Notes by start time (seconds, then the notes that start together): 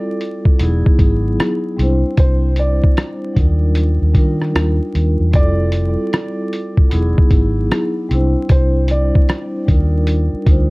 Already playing: G3 C4 E4 F4 A4 D5
0.21 closed hi-hat
0.45 kick
0.59 E1 F#3 B3 D#4 E4, closed hi-hat
0.64 G#4
0.86 kick
0.99 G#1 F#3 B3 D#4 E4, kick, closed hi-hat
1.04 G#4
1.40 cross-stick, closed hi-hat
1.77 C2 G3 C4 D4 E4, closed hi-hat
1.82 C5
2.17 C2 C5, kick, closed hi-hat
2.56 D5, closed hi-hat
2.84 kick
2.97 cross-stick, closed hi-hat
3.34 D#2 F#3 D4 D#4, kick, closed hi-hat
3.38 G3 F4 A#4
3.75 closed hi-hat
4.02 D#2
4.14 D#3 G3 D4 D#4 F4, kick, closed hi-hat
4.18 A#4
4.42 cross-stick
4.55 D#2, cross-stick, closed hi-hat
4.95 D#2, closed hi-hat
5.20 E2
5.31 F1 G3 C4 E4, kick, closed hi-hat
5.35 F4 A4 D5
5.72 closed hi-hat
6.13 cross-stick, closed hi-hat
6.53 closed hi-hat
6.77 kick
6.89 E1 F#3 B3 D#4 E4, closed hi-hat
6.94 G#4
7.18 kick
7.30 G#1 F#3 B3 D#4 E4, kick, closed hi-hat
7.35 G#4
7.71 cross-stick, closed hi-hat
8.09 C2 G3 C4 D4 E4, closed hi-hat
8.14 C5
8.49 C2 C5, kick, closed hi-hat
8.88 D5, closed hi-hat
9.15 kick
9.29 cross-stick, closed hi-hat
9.66 D#2 G3 D4 D#4, kick, closed hi-hat
9.70 F4 A#4
10.07 closed hi-hat
10.33 muted fingered electric bass stroke
10.45 D2 G3 D4 D#4, kick, closed hi-hat
10.49 F4 C5